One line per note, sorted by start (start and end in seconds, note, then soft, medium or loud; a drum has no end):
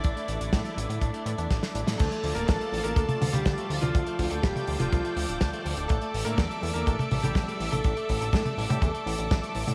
0.00 1.95 A3 medium
0.00 1.96 D4 medium
0.00 1.96 E4 medium
0.00 1.96 D5 medium
0.00 closed hi-hat medium
0.04 0.13 A1 loud
0.04 0.13 D4 medium
0.04 kick loud
0.16 0.25 A3 medium
0.16 closed hi-hat soft
0.28 0.38 A1 loud
0.28 0.40 E3 medium
0.28 closed hi-hat medium
0.41 0.50 A1 medium
0.41 0.50 D3 medium
0.41 closed hi-hat medium
0.53 0.62 A2 loud
0.53 0.62 D4 medium
0.53 kick loud
0.53 snare loud
0.53 closed hi-hat medium
0.65 0.74 A3 medium
0.65 closed hi-hat soft
0.77 0.86 A1 medium
0.77 0.89 E3 medium
0.77 closed hi-hat loud
0.89 0.98 A2 medium
0.89 0.99 D3 medium
0.89 closed hi-hat medium
1.01 1.11 A2 loud
1.01 1.11 D4 medium
1.01 kick medium
1.01 closed hi-hat medium
1.14 1.23 A3 medium
1.14 closed hi-hat soft
1.26 1.35 A2 medium
1.26 1.32 E3 medium
1.26 closed hi-hat medium
1.38 1.47 E2 medium
1.38 1.47 D4 loud
1.38 closed hi-hat medium
1.51 1.60 A1 loud
1.51 1.62 A3 medium
1.51 kick loud
1.51 snare medium
1.51 closed hi-hat medium
1.63 1.68 D3 medium
1.63 snare medium
1.63 closed hi-hat soft
1.75 1.84 A1 medium
1.75 1.80 D4 medium
1.75 closed hi-hat medium
1.87 1.96 A2 medium
1.87 1.96 D3 loud
1.87 snare medium
1.87 closed hi-hat medium
1.98 2.09 D2 loud
1.98 2.34 A3 medium
1.98 2.08 D4 medium
1.98 5.86 F4 medium
1.98 2.36 A4 loud
1.98 9.75 A4 medium
1.98 9.75 D5 medium
1.98 3.93 A5 medium
1.98 kick loud
1.98 closed hi-hat medium
1.98 crash loud
2.12 2.21 A3 medium
2.12 closed hi-hat soft
2.23 2.33 D2 loud
2.23 2.35 F3 medium
2.23 open hi-hat loud
2.35 2.45 D1 medium
2.35 2.45 D3 medium
2.35 2.48 A#3 medium
2.35 2.48 A#4 loud
2.35 closed hi-hat medium
2.47 2.58 A1 loud
2.47 2.83 A3 medium
2.47 2.57 D4 medium
2.47 2.85 A4 loud
2.47 kick loud
2.47 snare loud
2.47 closed hi-hat medium
2.60 2.69 A3 medium
2.60 closed hi-hat soft
2.72 2.82 A1 medium
2.72 2.84 F3 medium
2.72 open hi-hat loud
2.84 2.94 A1 medium
2.84 2.94 D3 medium
2.84 2.96 A#3 medium
2.84 2.97 A#4 loud
2.84 closed hi-hat medium
2.96 3.06 D2 loud
2.96 3.31 A3 medium
2.96 3.06 D4 medium
2.96 3.30 A4 loud
2.96 kick loud
2.96 closed hi-hat medium
3.09 3.18 A3 medium
3.09 closed hi-hat soft
3.09 high tom medium
3.21 3.30 D2 loud
3.21 3.33 F3 medium
3.21 open hi-hat loud
3.21 high tom medium
3.33 3.43 D2 medium
3.33 3.43 D3 medium
3.33 3.79 G3 medium
3.33 3.83 G4 loud
3.33 closed hi-hat medium
3.33 high tom medium
3.46 3.55 D2 loud
3.46 3.55 D4 medium
3.46 kick loud
3.46 snare loud
3.46 closed hi-hat medium
3.58 3.67 A3 medium
3.58 closed hi-hat soft
3.70 3.79 D2 loud
3.70 3.82 F3 medium
3.70 open hi-hat loud
3.81 3.91 D2 medium
3.81 3.91 D3 medium
3.81 4.28 F3 medium
3.81 4.27 F4 loud
3.81 closed hi-hat medium
3.81 high tom medium
3.94 4.04 D2 loud
3.94 4.03 D4 medium
3.94 5.88 G5 medium
3.94 kick loud
3.94 closed hi-hat medium
4.07 4.16 A3 medium
4.07 closed hi-hat soft
4.19 4.28 D2 loud
4.19 4.31 F3 medium
4.19 kick medium
4.19 open hi-hat loud
4.30 4.40 D2 medium
4.30 4.40 D3 medium
4.30 4.43 A3 medium
4.30 4.43 A4 medium
4.30 closed hi-hat medium
4.42 4.52 D1 loud
4.42 4.78 G3 medium
4.42 4.52 D4 medium
4.42 4.80 G4 medium
4.42 kick loud
4.42 snare loud
4.42 closed hi-hat medium
4.56 4.64 A3 medium
4.56 closed hi-hat soft
4.56 high tom medium
4.67 4.77 D2 loud
4.67 4.79 F3 medium
4.67 open hi-hat loud
4.79 4.89 D1 medium
4.79 4.89 D3 medium
4.79 4.91 F3 medium
4.79 4.90 F4 medium
4.79 closed hi-hat medium
4.79 high tom medium
4.91 5.01 C2 loud
4.91 5.38 F3 medium
4.91 5.01 D4 medium
4.91 5.37 F4 medium
4.91 kick loud
4.91 closed hi-hat medium
5.05 5.13 A3 medium
5.05 closed hi-hat soft
5.16 5.26 D2 loud
5.16 5.28 F3 medium
5.16 open hi-hat loud
5.29 5.38 D1 medium
5.29 5.38 D3 medium
5.29 closed hi-hat medium
5.41 5.50 D2 loud
5.41 5.50 D4 medium
5.41 kick loud
5.41 snare loud
5.41 closed hi-hat medium
5.53 5.62 A3 medium
5.53 closed hi-hat soft
5.65 5.74 D2 loud
5.65 5.77 F3 medium
5.65 open hi-hat loud
5.77 5.87 D1 medium
5.77 5.86 D3 medium
5.77 closed hi-hat medium
5.88 5.99 A1 loud
5.88 6.24 A3 medium
5.88 5.99 D4 medium
5.88 6.27 A4 loud
5.88 9.75 E5 medium
5.88 9.75 D6 medium
5.88 kick loud
5.88 closed hi-hat medium
6.01 6.11 A3 medium
6.01 closed hi-hat soft
6.14 6.23 A1 loud
6.14 6.26 E3 medium
6.14 open hi-hat loud
6.25 6.35 A2 medium
6.25 6.35 D3 medium
6.25 6.38 A#3 medium
6.25 6.38 A#4 loud
6.25 closed hi-hat medium
6.37 6.47 E2 loud
6.37 6.73 A3 medium
6.37 6.47 D4 medium
6.37 6.72 A4 loud
6.37 kick loud
6.37 snare loud
6.37 closed hi-hat medium
6.51 6.60 A3 medium
6.51 closed hi-hat medium
6.63 6.72 E2 loud
6.63 6.75 E3 medium
6.63 open hi-hat loud
6.74 6.84 E2 medium
6.74 6.84 D3 medium
6.74 6.87 A#3 medium
6.74 6.87 A#4 loud
6.74 closed hi-hat medium
6.86 6.96 A1 loud
6.86 7.22 A3 medium
6.86 6.96 D4 medium
6.86 7.24 A4 loud
6.86 kick loud
6.86 closed hi-hat medium
6.99 7.08 A3 medium
6.99 closed hi-hat soft
6.99 high tom medium
7.11 7.21 A1 loud
7.11 7.23 E3 medium
7.11 open hi-hat loud
7.11 high tom medium
7.22 7.33 A1 medium
7.22 7.33 D3 medium
7.22 7.70 G3 medium
7.22 7.73 G4 loud
7.22 closed hi-hat medium
7.22 high tom medium
7.35 7.45 A1 loud
7.35 7.45 D4 medium
7.35 kick loud
7.35 snare loud
7.35 closed hi-hat medium
7.48 7.57 A3 medium
7.48 closed hi-hat soft
7.60 7.69 A1 medium
7.60 7.72 E3 medium
7.60 open hi-hat loud
7.72 7.81 A1 medium
7.72 7.82 D3 medium
7.72 8.19 A3 medium
7.72 8.19 A4 loud
7.72 closed hi-hat medium
7.72 high tom medium
7.84 7.94 A1 loud
7.84 7.94 D4 medium
7.84 kick loud
7.84 closed hi-hat medium
7.97 8.06 A3 medium
7.97 closed hi-hat soft
8.09 8.18 A1 loud
8.09 8.21 E3 medium
8.09 kick medium
8.09 open hi-hat loud
8.20 8.30 A1 medium
8.20 8.30 D3 medium
8.20 8.27 A3 medium
8.20 8.25 A4 loud
8.20 closed hi-hat medium
8.33 8.42 A2 loud
8.33 8.68 A3 medium
8.33 8.42 D4 medium
8.33 8.71 A4 loud
8.33 kick loud
8.33 snare loud
8.33 closed hi-hat medium
8.45 8.55 A3 medium
8.45 closed hi-hat soft
8.45 high tom medium
8.57 8.67 A1 loud
8.57 8.69 E3 medium
8.57 open hi-hat loud
8.69 8.79 A2 medium
8.69 8.79 D3 medium
8.69 8.82 G3 medium
8.69 8.82 G4 medium
8.69 closed hi-hat medium
8.69 high tom medium
8.81 8.91 E2 loud
8.81 9.28 A3 medium
8.81 8.91 D4 medium
8.81 9.27 A4 medium
8.81 kick loud
8.81 closed hi-hat medium
8.94 9.03 A3 medium
8.94 closed hi-hat soft
9.06 9.16 A1 loud
9.06 9.18 E3 medium
9.06 open hi-hat loud
9.18 9.28 A1 medium
9.18 9.28 D3 medium
9.18 closed hi-hat medium
9.31 9.40 A1 loud
9.31 9.40 D4 medium
9.31 kick loud
9.31 snare loud
9.31 closed hi-hat medium
9.43 9.52 A3 medium
9.43 closed hi-hat soft
9.55 9.64 A1 medium
9.55 9.67 E3 medium
9.55 open hi-hat loud
9.67 9.75 A2 medium
9.67 9.75 D3 medium
9.67 closed hi-hat medium
9.67 high tom medium